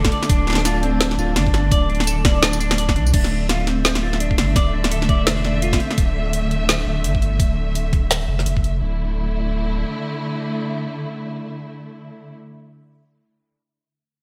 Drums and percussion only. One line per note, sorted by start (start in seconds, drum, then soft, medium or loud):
0.05 kick medium
0.05 snare medium
0.12 closed hi-hat soft
0.23 snare medium
0.23 tambourine soft
0.29 kick loud
0.29 closed hi-hat medium
0.47 snare soft
0.50 snare soft
0.53 snare medium
0.55 snare medium
0.58 snare soft
0.65 snare medium
0.65 closed hi-hat medium
0.65 tambourine medium
0.83 closed hi-hat soft
1.01 snare loud
1.01 closed hi-hat medium
1.11 snare medium
1.18 tambourine soft
1.36 snare medium
1.36 closed hi-hat medium
1.47 kick medium
1.54 snare medium
1.54 closed hi-hat soft
1.72 kick loud
1.72 closed hi-hat medium
1.90 closed hi-hat soft
1.95 closed hi-hat soft
2.00 snare medium
2.00 closed hi-hat soft
2.04 closed hi-hat soft
2.07 closed hi-hat medium
2.07 tambourine medium
2.25 kick loud
2.25 snare medium
2.25 closed hi-hat soft
2.43 snare loud
2.43 snare medium
2.43 closed hi-hat medium
2.53 tambourine medium
2.60 closed hi-hat soft
2.60 tambourine soft
2.71 snare soft
2.71 snare medium
2.78 closed hi-hat medium
2.89 kick medium
2.89 snare medium
2.96 closed hi-hat soft
3.07 tambourine soft
3.14 kick loud
3.14 closed hi-hat medium
3.14 crash medium
3.24 snare medium
3.49 snare medium
3.49 closed hi-hat medium
3.67 snare medium
3.67 closed hi-hat soft
3.85 snare loud
3.85 closed hi-hat medium
3.95 snare medium
4.13 snare medium
4.20 closed hi-hat medium
4.31 kick medium
4.38 snare medium
4.38 closed hi-hat soft
4.56 kick loud
4.56 snare medium
4.56 closed hi-hat medium
4.84 snare medium
4.92 closed hi-hat medium
5.02 snare medium
5.09 kick loud
5.09 closed hi-hat soft
5.27 snare loud
5.27 snare medium
5.27 closed hi-hat medium
5.45 snare medium
5.62 closed hi-hat medium
5.73 kick medium
5.73 snare medium
5.80 closed hi-hat soft
5.91 snare medium
5.98 kick loud
5.98 closed hi-hat medium
6.33 closed hi-hat medium
6.51 closed hi-hat soft
6.69 snare loud
6.69 closed hi-hat medium
7.04 closed hi-hat medium
7.15 kick medium
7.22 closed hi-hat soft
7.40 kick loud
7.40 closed hi-hat medium
7.75 closed hi-hat medium
7.93 kick loud
7.93 closed hi-hat soft
8.11 snare loud
8.11 closed hi-hat medium
8.39 snare soft
8.46 closed hi-hat medium
8.57 kick medium
8.64 closed hi-hat soft